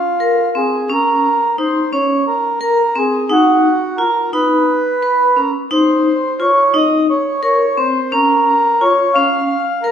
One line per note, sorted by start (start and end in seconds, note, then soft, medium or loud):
0.00 0.62 F4 medium
0.20 0.38 A#4 soft
0.55 0.73 C4 soft
0.55 0.91 G#4 soft
0.89 1.26 C#4 soft
0.94 1.56 A#4 medium
1.58 1.77 D#4 soft
1.58 1.91 C5 medium
1.93 2.29 C#4 medium
1.93 2.25 C#5 medium
2.28 2.60 A#4 medium
2.61 2.79 A#4 soft
2.61 2.98 A#4 medium
2.95 3.14 C4 medium
2.95 3.33 G#4 medium
3.30 3.66 D#4 medium
3.30 4.02 F#4 medium
3.98 4.17 F4 soft
3.98 4.31 A#4 medium
4.33 4.70 D#4 soft
4.33 5.40 B4 medium
5.03 5.21 B4 soft
5.35 5.55 C#4 soft
5.35 5.51 A#4 medium
5.71 6.07 D#4 medium
5.71 6.43 C5 medium
6.40 6.58 F4 soft
6.40 6.76 C#5 medium
6.74 7.11 D#4 medium
6.74 7.07 D#5 medium
7.10 7.42 C#5 medium
7.43 7.61 A#4 soft
7.43 7.79 C#5 medium
7.78 7.96 C4 soft
7.78 8.14 C5 medium
8.12 8.49 C#4 medium
8.12 8.84 A#4 medium
8.81 8.99 F4 soft
8.81 9.17 C#5 medium
9.14 9.52 C#4 medium
9.14 9.86 F5 medium
9.83 9.92 A#4 medium